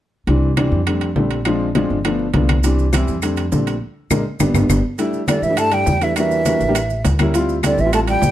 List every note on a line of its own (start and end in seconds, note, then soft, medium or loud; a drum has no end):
0.27 0.69 C2 medium
0.27 0.48 E3 medium
0.27 0.48 G3 medium
0.27 0.48 C4 medium
0.27 0.49 D4 medium
0.27 high conga soft
0.27 high timbale medium
0.43 high conga soft
0.57 0.78 E3 medium
0.57 0.78 G3 medium
0.57 0.78 C4 medium
0.57 0.78 D4 medium
0.57 high conga medium
0.57 high timbale medium
0.57 low timbale medium
0.57 claves medium
0.72 1.13 F2 medium
0.72 high conga soft
0.87 1.07 G3 medium
0.87 1.07 A3 medium
0.87 1.08 C4 medium
0.87 1.08 D4 medium
0.87 high conga soft
0.87 high timbale medium
0.87 claves soft
1.01 high conga soft
1.01 high timbale medium
1.16 1.84 A#1 medium
1.16 1.37 G3 medium
1.16 1.37 A3 medium
1.16 1.37 C4 medium
1.16 1.37 D4 medium
1.16 high conga medium
1.16 low timbale medium
1.31 high timbale medium
1.45 1.66 F3 medium
1.45 1.66 G#3 medium
1.45 1.67 C4 medium
1.45 1.67 D4 medium
1.45 high conga soft
1.45 high timbale medium
1.45 claves medium
1.61 high conga soft
1.75 1.96 F3 medium
1.75 1.96 G#3 medium
1.75 1.96 C4 medium
1.75 1.96 D4 medium
1.75 high conga medium
1.75 high timbale medium
1.75 low timbale medium
1.90 2.31 G1 medium
1.90 high conga soft
2.05 2.25 F3 medium
2.05 2.25 A3 medium
2.05 2.25 B3 medium
2.05 2.26 D4 medium
2.05 high conga soft
2.05 high timbale medium
2.05 claves medium
2.19 high conga soft
2.34 3.02 C2 medium
2.34 2.55 F3 medium
2.34 2.55 A3 medium
2.34 2.55 B3 medium
2.34 2.55 D4 medium
2.34 high conga medium
2.34 high timbale medium
2.34 low timbale medium
2.49 high conga medium
2.49 high timbale medium
2.49 claves medium
2.64 2.84 E3 medium
2.64 2.84 G3 medium
2.64 2.84 C4 medium
2.64 2.84 D4 medium
2.64 high conga soft
2.64 high timbale medium
2.64 maracas medium
2.78 high conga soft
2.78 maracas soft
2.93 3.13 E3 medium
2.93 3.13 G3 medium
2.93 3.14 C4 medium
2.93 3.14 E4 medium
2.93 high conga medium
2.93 high timbale medium
2.93 low timbale medium
2.93 claves medium
2.93 maracas medium
3.08 3.49 F2 medium
3.08 high conga soft
3.08 maracas soft
3.22 3.43 G3 medium
3.22 3.43 A3 medium
3.22 3.43 C4 medium
3.22 3.43 D4 medium
3.22 high conga soft
3.22 high timbale medium
3.22 claves medium
3.22 maracas medium
3.37 high conga soft
3.37 high timbale medium
3.37 maracas soft
3.52 3.79 A#1 medium
3.52 3.72 G3 medium
3.52 3.73 A3 medium
3.52 3.73 C4 medium
3.52 3.73 D4 medium
3.52 high conga medium
3.52 low timbale medium
3.52 maracas medium
3.67 high timbale medium
3.67 maracas soft
4.11 4.22 A#1 medium
4.11 4.20 G#3 medium
4.11 4.20 A#3 medium
4.11 4.20 D4 medium
4.11 high conga medium
4.11 high timbale medium
4.11 claves medium
4.11 maracas medium
4.40 4.51 G1 medium
4.40 4.49 G3 medium
4.40 4.49 B3 medium
4.40 4.49 D4 medium
4.40 high conga medium
4.40 high timbale medium
4.40 claves medium
4.40 maracas medium
4.54 4.65 G1 medium
4.54 4.64 G3 medium
4.54 4.64 B3 medium
4.54 4.64 D4 medium
4.54 high conga medium
4.54 high timbale medium
4.54 claves medium
4.54 maracas medium
4.69 4.80 G1 medium
4.69 4.79 G3 medium
4.69 4.79 B3 medium
4.69 4.79 D4 medium
4.69 high conga medium
4.69 high timbale medium
4.69 claves medium
4.69 maracas medium
4.98 5.19 G3 medium
4.98 5.19 A3 medium
4.98 5.20 D4 medium
4.98 5.20 E4 medium
4.98 high conga soft
4.98 high timbale medium
4.98 maracas medium
5.13 high conga soft
5.13 maracas soft
5.28 5.45 D3 medium
5.28 5.43 G3 medium
5.28 5.43 A3 medium
5.28 5.44 D4 medium
5.28 5.44 E4 medium
5.28 5.44 D5 medium
5.28 high conga medium
5.28 high timbale medium
5.28 low timbale medium
5.28 claves medium
5.28 maracas medium
5.42 5.84 G2 medium
5.42 5.59 E3 medium
5.42 5.60 E5 medium
5.42 high conga soft
5.42 maracas soft
5.50 5.86 G3 medium
5.50 5.86 A3 medium
5.50 5.86 D4 medium
5.50 5.87 E4 medium
5.57 5.73 A3 medium
5.57 5.75 A5 medium
5.57 high conga soft
5.57 high timbale medium
5.57 claves medium
5.57 maracas medium
5.72 6.03 G3 medium
5.72 6.05 G5 medium
5.72 high conga soft
5.72 high timbale medium
5.72 maracas soft
5.86 6.55 E2 medium
5.86 high conga medium
5.86 low timbale medium
5.86 maracas medium
6.01 6.16 E3 medium
6.01 6.12 G3 medium
6.01 6.12 A3 medium
6.01 6.12 D4 medium
6.01 6.12 E4 medium
6.01 6.17 E5 medium
6.01 high timbale medium
6.01 maracas soft
6.16 7.01 E3 medium
6.16 6.37 G3 medium
6.16 6.37 A#3 medium
6.16 6.37 D4 medium
6.16 6.37 F#4 medium
6.16 7.01 E5 medium
6.16 high conga soft
6.16 high timbale medium
6.16 claves medium
6.16 maracas medium
6.31 high conga soft
6.31 maracas soft
6.45 6.61 G3 medium
6.45 6.61 A#3 medium
6.45 6.62 D4 medium
6.45 6.62 F#4 medium
6.45 high conga medium
6.45 high timbale medium
6.45 low timbale medium
6.45 maracas medium
6.61 7.02 A1 medium
6.61 high conga soft
6.61 maracas soft
6.68 6.75 G3 medium
6.68 6.75 A#3 medium
6.68 6.75 D4 medium
6.68 6.76 G4 medium
6.75 high conga soft
6.75 high timbale medium
6.75 claves medium
6.75 maracas medium
6.90 high conga soft
6.90 maracas soft
7.05 7.73 D2 medium
7.05 high conga medium
7.05 high timbale medium
7.05 low timbale medium
7.05 maracas medium
7.19 7.30 G3 medium
7.19 7.30 A#3 medium
7.19 7.30 C#4 medium
7.19 7.30 E4 medium
7.19 high conga medium
7.19 high timbale medium
7.19 claves medium
7.19 maracas soft
7.34 7.55 G3 medium
7.34 7.55 C4 medium
7.34 7.55 E4 medium
7.34 7.55 F4 loud
7.34 high conga soft
7.34 high timbale medium
7.34 maracas medium
7.49 high conga soft
7.49 maracas soft
7.63 7.80 D3 medium
7.63 7.79 G3 medium
7.63 7.79 C4 medium
7.63 7.79 E4 medium
7.63 7.79 G4 medium
7.63 7.82 D5 medium
7.63 high conga medium
7.63 high timbale medium
7.63 low timbale medium
7.63 claves medium
7.63 maracas medium
7.78 8.19 A1 medium
7.78 7.93 E3 medium
7.78 7.93 E5 medium
7.78 high conga soft
7.78 maracas soft
7.85 8.21 G3 medium
7.85 8.22 C4 medium
7.85 8.22 E4 medium
7.85 8.22 F4 medium
7.93 8.00 A3 medium
7.93 8.00 A5 medium
7.93 high conga soft
7.93 high timbale medium
7.93 claves medium
7.93 maracas medium
8.07 8.31 G3 medium
8.07 8.31 G5 medium
8.07 high conga soft
8.07 high timbale medium
8.07 maracas soft
8.22 8.31 A#1 medium
8.22 high conga medium
8.22 low timbale medium
8.22 maracas medium